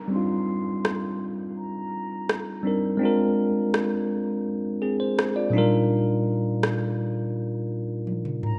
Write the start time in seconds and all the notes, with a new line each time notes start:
Already playing: downlifter
0.08 G3 C4
0.12 D4 D#4 C6
0.16 F4
0.85 cross-stick
1.57 A#5
2.29 cross-stick
2.63 G3 C4 D4 D#4
2.67 A#4
2.97 G#3 C4 D4
3.03 F4 A#4
3.74 cross-stick
4.82 C4 G#4
5.00 C5
5.19 cross-stick
5.36 F4 D5
5.50 A#2 F#3 D4
5.55 G3 D#4 F4 A#4
6.63 cross-stick
8.07 high tom
8.25 mid tom
8.43 A#5, mid tom